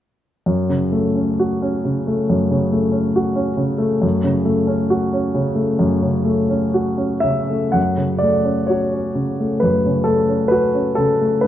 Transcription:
0.46 F#2
0.69 C#3
0.92 A3
1.16 C#4
1.40 F#4
1.62 C#4
1.85 C#3
2.07 A3
2.29 F#2
2.51 C#3
2.72 A3
2.92 C#4
3.16 F#4
3.36 C#4
3.57 C#3
3.78 A3
4.02 F#2
4.24 C#3
4.45 A3
4.67 C#4
4.90 F#4
5.13 C#4
5.35 C#3
5.55 A3
5.79 F#2
6.02 C#3
6.25 A3
6.50 C#4
6.74 F#4
6.98 C#4
7.20 C#3 E5
7.50 A3
7.72 F#2 F#5
7.97 C#3
8.19 A3 D5
8.44 C#4
8.67 F#4 C#5
8.94 C#4
9.15 C#3
9.40 A3
9.60 F#2 B4
9.86 C#3
10.04 A3 A4
10.29 C#4
10.48 F#4 B4
10.74 C#4
10.95 C#3 A4
11.21 A3
11.41 G#2 B4

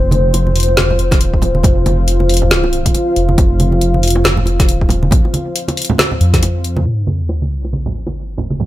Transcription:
Already playing: F1 F4 C5 F5
0.11 closed hi-hat, high conga
0.34 F1, closed hi-hat, high bongo
0.47 high conga
0.56 open hi-hat
0.60 closed hi-hat
0.63 closed hi-hat
0.68 high bongo
0.77 snare, high conga
0.90 low conga
0.99 closed hi-hat
1.11 kick, snare, closed hi-hat, high bongo, high conga
1.21 D#1, closed hi-hat
1.34 kick
1.42 closed hi-hat, high bongo, low conga
1.55 high conga
1.63 F1, kick, closed hi-hat, low conga
1.86 closed hi-hat, high bongo, high conga
2.08 closed hi-hat
2.20 high bongo, high conga
2.29 open hi-hat
2.34 closed hi-hat
2.37 closed hi-hat
2.42 low conga
2.51 snare, high conga
2.64 high bongo
2.73 closed hi-hat
2.86 kick, closed hi-hat, high conga
2.94 closed hi-hat, high bongo
3.16 F1, closed hi-hat
3.29 high conga
3.38 F1, kick, closed hi-hat, high bongo
3.60 closed hi-hat, high conga
3.72 high bongo
3.81 F1, closed hi-hat
3.94 high conga
4.03 open hi-hat
4.08 closed hi-hat
4.10 closed hi-hat
4.15 high bongo
4.24 snare, high conga
4.37 low conga
4.46 closed hi-hat, high bongo
4.59 kick, snare, closed hi-hat, high conga
4.68 D#1, closed hi-hat
4.81 kick
4.89 closed hi-hat, high bongo, low conga
5.03 high conga
5.11 kick, closed hi-hat, low conga
5.25 high bongo
5.34 closed hi-hat, high conga
5.56 closed hi-hat
5.68 closed hi-hat, high bongo, high conga
5.77 open hi-hat
5.82 closed hi-hat
5.85 closed hi-hat
5.90 low conga
5.98 snare, high bongo, high conga
6.12 low conga
6.21 F2, closed hi-hat
6.33 kick, snare, closed hi-hat, high conga
6.43 closed hi-hat, high bongo
6.64 closed hi-hat
6.77 high bongo, high conga
6.86 A#3 F4 C5, high bongo, sub drop
7.07 high conga
7.29 high bongo
7.42 high conga
7.51 open hi-hat
7.65 high bongo
7.73 high conga
7.86 low conga
8.07 high bongo, high conga
8.38 high bongo, low conga
8.50 high conga
8.60 low conga

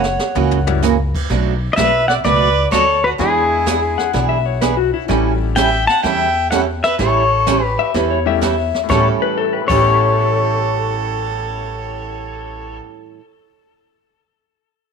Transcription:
Already playing: F#1 C#5 F#5
0.04 snare
0.19 snare
0.35 C#2 C#3 E3 A#3 C#4 F#4, floor tom
0.51 floor tom
0.67 G3 A#3 C#4 E4 F#4, floor tom
0.83 C#3 E3 A#3 C#4 F#4, snare, hi-hat pedal
1.15 kick, crash
1.30 B1 B2 F#3 A3 D4 F#4, brush sweep, kick, snare
1.73 B2 F#3 B4 D#5 E5
1.77 B1 A3 D4 F#4, kick, snare, hi-hat pedal
2.08 D5 F#5, snare
2.24 C#2 B2 F#3 A3 D4 F#4 B4 D5, brush sweep, kick, snare
2.71 D2 B2 F#3 A3 D4 F#4 A4 C#5, kick, snare, hi-hat pedal
3.04 F#4 B4
3.18 E2 E3 G#3 B3 D4 E4 G#4, brush sweep, kick, snare
3.66 E3 B3 D4 G#4, kick, snare, hi-hat pedal
3.98 F#5, snare
4.13 B1 E3 B3 D4 G#4, brush sweep, kick, snare
4.29 E5
4.46 C#5
4.61 E3 B3 D4 G#4 B4, kick, snare, hi-hat pedal
4.77 F#4
4.94 E4
5.08 A1 E3 G3 A3 C#4 E4 G4 A4, brush sweep, kick, snare
5.56 E3 G3 C#4 E4 A4 E5 G5, kick, snare, hi-hat pedal
5.87 F#5 A5, snare
6.04 E2 E3 G3 C#4 E4 A4 E5 G5, brush sweep, kick, snare
6.51 E3 G3 C#4 E4 A4 C#5 F#5, kick, snare, hi-hat pedal
6.83 B4 E5, snare
6.99 A1 E3 G3 C#4 E4 A4 C#5, brush sweep, kick, snare
7.47 E3 G3 C#4 E4 A4, kick, snare, hi-hat pedal
7.64 G4 B4
7.79 E5
7.94 E2 E3 G3 C#4 E4 A4 B4, brush sweep, kick, snare
8.11 C#5
8.26 G3 A3 C#4 E4 G4 E5
8.41 E3 G3 C#4 E4 A4 E5, kick, snare, hi-hat pedal
8.74 snare
8.84 A2 A3
8.89 A1 A2 E3 G3 B3 C#4 E4 A4 C#5, kick, snare
8.95 G4
9.22 B4
9.37 A4 B4
9.44 E5
9.53 B4 G5
9.62 A2 B5
9.67 A1 A2 E3 G3 A3 B3 C#4 A4 C#5, kick, crash
9.71 C#4 E4 A4 E6
9.76 G4
9.83 G6
9.94 B6

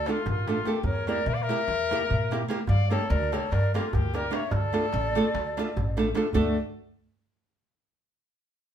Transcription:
Already playing: A4
0.06 A3 D4 F4 A4, darbuka tek
0.26 A1 F4 A#4, darbuka dum
0.43 G4 A#4
0.47 A3 D4 F4 A4, darbuka tek
0.65 A3 D4 F4 G4 A4 A#4, darbuka tek
0.75 darbuka tek
0.83 E2 A#4 C#5, darbuka dum
1.07 A#3 E4 G4 A#4 D5, darbuka tek
1.17 darbuka tek
1.26 A#2 A#4 E5, darbuka tek
1.34 D5 F5
1.42 A#4 E5
1.49 A#3 E4 G4 A#4, darbuka tek
1.59 darbuka tek
1.68 E2, darbuka tek
1.91 A#3 E4 G4 A#4, darbuka tek
2.10 A#2, darbuka dum
2.31 A#3 E4 G4 A#4, darbuka tek
2.48 A#3 E4 G4 A#4, darbuka tek
2.59 darbuka tek
2.67 G2 D5 F5, darbuka dum
2.90 A#3 D4 G4 A4 A#4 C#5, darbuka tek
3.01 darbuka tek
3.09 D2 A#4 D5, darbuka tek
3.32 A#3 D4 G4 A4 A#4 C#5, darbuka tek
3.43 darbuka tek
3.52 G2 A#4 D5, darbuka tek
3.64 darbuka tek
3.74 A#3 D4 F4 G4 A4 A#4, darbuka tek
3.93 D2 G4 A#4, darbuka dum
4.14 A#3 D4 G4 A#4 D5, darbuka tek
4.31 A#3 D4 G4 A#4 C#5 E5, darbuka tek
4.42 darbuka tek
4.51 D2 A4 D5, darbuka dum
4.72 A3 D4 F4 A4, darbuka tek
4.84 darbuka tek
4.93 A1, darbuka tek
5.05 darbuka tek
5.15 A3 D4 F4 A4
5.26 darbuka tek
5.35 D2, darbuka tek
5.57 A3 D4 F4 A4, darbuka tek
5.68 darbuka tek
5.77 A1, darbuka dum
5.97 A3 D4 F4 A4, darbuka tek
6.06 darbuka tek
6.14 A3 D4 F4 A4, darbuka tek
6.24 darbuka tek
6.33 D2 A3 D4 F#4 A4 D5, darbuka dum

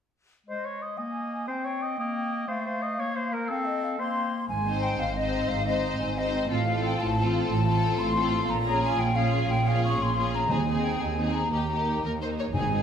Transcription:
0.46 G#3 C5 D#5
0.65 C#5
0.82 D#5
0.97 A#3 D#5 G#5
1.47 C4 C5 G5
1.64 C#5
1.82 D#5
1.98 A#3 D#5
2.46 A3 C5 F5
2.66 C5
2.82 D#5
2.99 A#3 C#5
3.16 C5
3.32 A#4
3.49 C4 A4 F5
3.65 D#5
3.83 F5
3.98 A#3 C5 F5 C6
4.49 G#1 G#2 G#5
4.66 C4 D#4 C5
4.83 G5
4.99 G#1 G#2 F5
5.17 C4 D#4 C5 D#5
5.49 G#1 G#2 F5
5.65 C4 D#4 C5 D#5
6.00 G#1 G#2 G#5
6.17 C4 D#4 C5 D#5
6.50 A1 A2 C4 F4 A4 F5
6.66 C4 F4 A4
6.84 G5
6.99 A1 A2 A5
7.16 C4 F4 A4
7.49 A1 A2 A5
7.66 C4 F4 A4
7.99 A1 A2 C6
8.16 C4 F4 A4
8.49 A#1 A#2 A#5
8.65 C#4 F4 G#4
8.83 G#5
8.99 A#1 A#2 G5
9.15 C#4 F4 G#4 F5
9.49 A#1 A#2 G5
9.66 C#4 F4 G#4 F5
9.84 C#6
9.99 A#1 A#2 C6
10.15 C#4 F4 G#4
10.34 A#5
10.49 D#2 D#3 C4 D#4 G#4 G#5
10.66 C4 D#4 G#4
10.83 G5
11.01 D#2 G#5
11.18 C4 D#4 G#4
11.33 A#5
11.51 D#2 A#3 D#4 G4 A#5
11.69 A#3 D#4 G4
12.03 D#2 A#4
12.20 A#3 D#4 C5
12.39 C#5
12.53 G#1 G#2 C4 D#4 G#4 G#5
12.71 C4 D#4 G#4

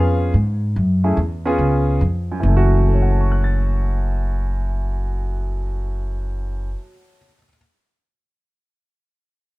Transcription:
Already playing: F2 B3 C#4 F4 G#4 B4 F5
0.34 G#2
0.76 F#2
1.04 A3 C#4 E4 G#4
1.17 E2
1.46 B3 C#4 F4 G#4
1.58 C#2
2.01 F2
2.32 F#2
2.40 F#1 E3
2.48 A3
2.57 F#4
2.87 A4
2.94 C#5
3.02 F#5
3.11 A5
3.21 C#6
3.32 F#6
3.44 A6

